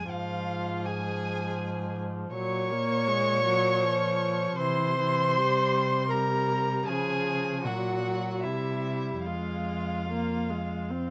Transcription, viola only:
0.09 2.31 F3 soft
2.35 2.73 F#3 medium
2.71 3.09 A#3 medium
3.08 3.44 G#3 medium
3.45 3.85 F#3 medium
3.83 4.61 F3 medium
4.60 4.97 E3 medium
4.99 5.38 E3 medium
5.37 6.11 G3 medium
6.12 6.90 G3 soft
6.89 7.67 F3 medium
7.66 8.04 F#3 medium
8.05 8.47 F#3 soft
8.46 9.28 G3 soft
9.27 10.00 G#3 soft
10.09 10.51 A#3 soft
10.50 10.92 G#3 soft
10.91 11.10 C4 soft

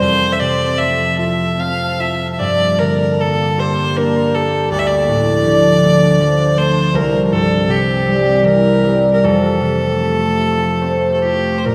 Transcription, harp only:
0.00 2.45 F2 medium
0.00 1.59 C4 medium
0.41 2.45 C3 soft
0.79 3.25 A3 soft
1.19 1.99 F4 soft
1.59 4.59 C4 soft
2.00 4.52 F4 soft
2.40 4.76 G2 medium
2.80 4.76 D3 soft
3.19 5.15 A#3 soft
3.58 4.35 G4 soft
3.97 6.77 D4 soft
4.35 6.71 G4 soft
4.72 6.99 D2 medium
5.09 5.51 A2 soft
5.47 6.99 D3 medium
5.84 6.57 A3 soft
6.20 6.99 F3 medium
6.58 9.90 A3 medium
6.94 9.27 C2 medium
7.32 7.74 G2 soft
7.68 9.27 C3 medium
8.08 8.83 G3 medium
8.44 9.27 E3 medium
8.84 9.27 G3 medium
9.23 11.70 F2 medium
9.61 11.70 C3 soft
10.01 11.72 A3 soft
10.40 11.24 F4 soft
10.82 11.75 C4 soft
10.82 11.75 C5 medium
11.25 11.75 F4 soft
11.66 11.75 A#2 medium

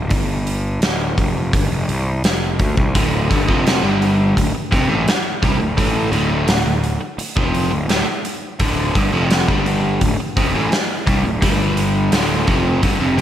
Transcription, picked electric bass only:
0.11 0.78 G1 medium
0.81 1.15 D1 medium
1.18 1.51 F1 medium
1.54 1.70 G1 medium
1.71 1.87 F1 medium
1.89 2.22 C2 medium
2.24 2.57 F1 medium
2.60 2.76 D2 medium
2.77 2.94 C2 medium
2.95 3.28 D1 medium
3.31 3.47 G1 medium
3.49 3.81 F1 medium
3.83 4.33 G1 medium
4.37 4.53 D1 medium
4.54 muted picked electric bass stroke soft
4.72 4.88 F1 medium
4.88 5.05 A1 medium
5.06 muted picked electric bass stroke soft
5.43 5.59 C2 medium
5.59 5.76 D1 medium
5.78 6.11 A1 medium
6.12 6.46 D1 medium
6.47 6.64 D1 medium
6.65 6.98 D1 medium
7.00 muted picked electric bass stroke soft
7.18 muted picked electric bass stroke soft
7.37 7.70 F1 medium
7.71 7.88 D1 medium
7.88 8.05 D1 medium
8.05 muted picked electric bass stroke soft
8.60 8.93 D1 medium
8.95 9.11 G1 medium
9.12 9.45 F1 medium
9.48 9.98 G1 medium
10.01 10.18 D1 medium
10.18 muted picked electric bass stroke soft
10.37 10.53 F1 medium
10.53 10.70 A1 medium
10.71 muted picked electric bass stroke soft
11.07 11.23 C2 medium
11.24 11.41 D1 medium
11.42 12.09 G1 medium
12.13 12.46 D1 medium
12.48 12.81 F1 medium
12.83 12.99 G1 medium
13.00 13.17 F1 medium
13.18 13.21 C2 medium

